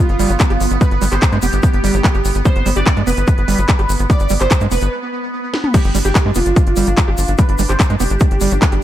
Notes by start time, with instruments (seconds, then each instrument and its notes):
Already playing: synth texture B3, analog synth lead F4
0.09 analog synth bass G1, closed hi-hat
0.19 analog synth bass G1, acid bass G3, open hi-hat, shaker
0.30 analog synth bass G1, acid bass F3, closed hi-hat, shaker
0.40 acid bass G3, kick, clap, closed hi-hat, shaker
0.50 analog synth bass G1, acid bass G4, closed hi-hat
0.60 analog synth bass G1, open hi-hat, shaker
0.71 analog synth bass G1, closed hi-hat, shaker
0.81 acid bass G3, analog synth lead B4, kick, closed hi-hat, shaker
0.91 analog synth bass G1, closed hi-hat
1.02 analog synth bass G1, acid bass G3, open hi-hat, shaker
1.12 analog synth bass G1, acid bass G4, analog synth lead C5, clap, closed hi-hat, shaker
1.22 acid bass G3, kick, clap, closed hi-hat, shaker
1.32 analog synth bass G2, acid bass G#3, closed hi-hat
1.42 analog synth bass F1, acid bass B3, analog synth lead G4, open hi-hat, shaker
1.52 analog synth bass G1, closed hi-hat, shaker
1.63 kick, closed hi-hat, shaker
1.73 analog synth bass G1, closed hi-hat
1.84 analog synth bass G1, acid bass G3, open hi-hat, shaker
1.94 analog synth bass G1, acid bass F3, closed hi-hat, shaker
2.04 acid bass G3, kick, clap, closed hi-hat, shaker
2.15 analog synth bass G1, acid bass G4, closed hi-hat
2.25 analog synth bass G1, open hi-hat, shaker
2.35 analog synth bass G1, closed hi-hat, shaker
2.45 acid bass G3, analog synth lead C5, kick, closed hi-hat, shaker
2.56 analog synth bass G1, closed hi-hat
2.66 analog synth bass G1, acid bass G3, open hi-hat, shaker
2.76 analog synth bass G1, acid bass G4, analog synth lead D5, closed hi-hat, shaker
2.86 acid bass G3, kick, clap, closed hi-hat, shaker
2.97 analog synth bass G2, acid bass G#3, closed hi-hat
3.07 analog synth bass F1, acid bass B3, analog synth lead B4, open hi-hat, shaker
3.17 analog synth bass G1, closed hi-hat, shaker
3.27 kick, closed hi-hat, shaker
3.38 analog synth bass G1, closed hi-hat
3.48 analog synth bass G1, acid bass G3, open hi-hat, shaker
3.58 analog synth bass G1, acid bass F3, closed hi-hat, shaker
3.68 acid bass G3, kick, clap, closed hi-hat, shaker
3.79 analog synth bass G1, acid bass G4, closed hi-hat
3.89 analog synth bass G1, open hi-hat, shaker
3.99 analog synth bass G1, closed hi-hat, shaker
4.10 acid bass G3, analog synth lead D5, kick, closed hi-hat, shaker
4.20 analog synth bass G1, closed hi-hat, shaker
4.29 analog synth bass G1, acid bass G3, open hi-hat, shaker
4.41 analog synth bass G1, acid bass G4, analog synth lead C5, clap, closed hi-hat, shaker
4.51 acid bass G3, kick, clap, closed hi-hat, shaker
4.60 analog synth bass G2, acid bass G#3, closed hi-hat, shaker
4.71 analog synth bass F1, acid bass B3, analog synth lead B4, open hi-hat, shaker
4.82 analog synth bass G1, closed hi-hat, shaker
5.54 snare
5.64 mid tom
5.74 acid bass G3, synth texture D4, analog synth lead G4, kick, closed hi-hat, crash, shaker
5.84 analog synth bass G1, closed hi-hat
5.95 analog synth bass G1, acid bass G3, open hi-hat, shaker
6.05 analog synth bass G1, analog synth lead G4, acid bass G4, closed hi-hat, shaker
6.15 acid bass G3, kick, clap, closed hi-hat, shaker
6.26 analog synth bass G2, acid bass G#3
6.35 analog synth bass F1, acid bass B3, analog synth lead F4, open hi-hat, shaker
6.46 analog synth bass G1, closed hi-hat, shaker
6.56 kick, closed hi-hat, shaker
6.67 analog synth bass G1, closed hi-hat
6.76 analog synth bass G1, acid bass G3, open hi-hat, shaker
6.87 analog synth bass G1, acid bass F3, closed hi-hat, shaker
6.97 acid bass G3, kick, clap, closed hi-hat, shaker
7.08 analog synth bass G1, acid bass G4
7.18 analog synth bass G1, open hi-hat, shaker
7.28 analog synth bass G1, closed hi-hat, shaker
7.38 acid bass G3, analog synth lead B4, kick, closed hi-hat, shaker
7.49 analog synth bass G1, closed hi-hat
7.58 analog synth bass G1, acid bass G3, open hi-hat, shaker
7.69 analog synth bass G1, acid bass G4, analog synth lead C5, clap, closed hi-hat, shaker
7.80 acid bass G3, kick, clap, closed hi-hat, shaker
7.90 analog synth bass G2, acid bass G#3, closed hi-hat
8.00 analog synth bass F1, acid bass B3, analog synth lead G4, open hi-hat, shaker
8.10 analog synth bass G1, closed hi-hat, shaker
8.20 kick, closed hi-hat, shaker
8.31 analog synth bass G1, closed hi-hat
8.41 analog synth bass G1, acid bass G3, open hi-hat, shaker
8.51 analog synth bass G1, acid bass F3, closed hi-hat, shaker
8.62 acid bass G3, kick, clap, closed hi-hat, shaker
8.72 analog synth bass G1, acid bass G4, closed hi-hat